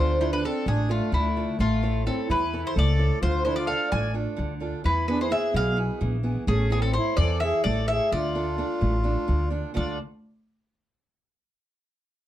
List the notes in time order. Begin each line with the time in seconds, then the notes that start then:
Already playing: D2 D3 F4 C5
0.19 D4 E4 F4 A4 C5
0.32 D4 B4
0.44 C4 D4 F4 A4
0.66 A1 A3 D4 G#4
0.89 A3 D4 F4 A4
1.12 D2 D3 A3 E4
1.37 D4 F4 A4
1.59 A1 A3 F4
1.83 E4 A4 C#5
2.06 C4 E4 A4 C#5
2.28 E2 E3 E4 B4
2.53 E4 A4 C#5
2.63 E4
2.67 C5
2.75 C#2 A3 A4 D5
2.99 E4 A4 C#5
3.21 D2 D3 F4 C5
3.45 D4 E4 F4 A4 C5
3.56 F4 D5
3.65 D4 F4 A4 F5
3.89 A1 A3 D5 G#5
4.14 D4 F4 A4
4.37 D2 D3
4.60 D4 F4 A4
4.84 E2 E3 E4 B4
5.08 B3 D4 E4 G#4 B4
5.21 E4 C5
5.30 B3 E4 G#4 E5
5.54 B1 B2 G#4 F5
5.76 B3 E4 G#4
6.01 A#1 E3
6.23 B3 E4 G#4
6.47 A1 A3 C#4 G#4
6.70 B3 E4 G#4 A4 C#5
6.82 C4 A4
6.93 E4 A4 C5 C#5
6.97 E4
7.17 E2 E3 A4 D5
7.40 E4 G#4 A4 C#5 E5
7.64 A1 A3 A4 D5
7.88 E4 G#4 A4 C#5 E5
8.12 D2 D3 F4 D5
8.35 D4 F4 A4
8.58 D4 F4 A4
8.81 A1 A3
9.04 D4 F4 A4
9.28 D2 D3
9.50 D4 F4 A4
9.74 D2 D3 A3 D4 F4 A4 D5